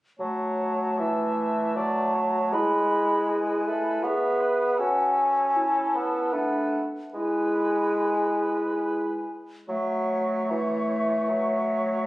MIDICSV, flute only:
0, 0, Header, 1, 2, 480
1, 0, Start_track
1, 0, Key_signature, 3, "major"
1, 0, Tempo, 800000
1, 119, Time_signature, 3, 2, 24, 8
1, 598, Tempo, 761421
1, 3958, Tempo, 814111
1, 4438, Tempo, 849858
1, 5878, Tempo, 791557
1, 7319, End_track
2, 0, Start_track
2, 0, Title_t, "Flute"
2, 0, Program_c, 0, 73
2, 121, Note_on_c, 0, 81, 33
2, 1054, Note_off_c, 0, 81, 0
2, 1078, Note_on_c, 0, 81, 40
2, 1570, Note_on_c, 0, 83, 44
2, 1579, Note_off_c, 0, 81, 0
2, 2044, Note_on_c, 0, 80, 46
2, 2054, Note_off_c, 0, 83, 0
2, 2519, Note_on_c, 0, 76, 43
2, 2529, Note_off_c, 0, 80, 0
2, 2993, Note_off_c, 0, 76, 0
2, 2998, Note_on_c, 0, 78, 45
2, 3232, Note_on_c, 0, 80, 41
2, 3241, Note_off_c, 0, 78, 0
2, 3477, Note_on_c, 0, 81, 42
2, 3487, Note_off_c, 0, 80, 0
2, 3963, Note_on_c, 0, 78, 35
2, 3972, Note_off_c, 0, 81, 0
2, 4269, Note_off_c, 0, 78, 0
2, 4439, Note_on_c, 0, 80, 33
2, 5669, Note_off_c, 0, 80, 0
2, 5880, Note_on_c, 0, 76, 35
2, 7319, Note_off_c, 0, 76, 0
2, 7319, End_track
0, 0, End_of_file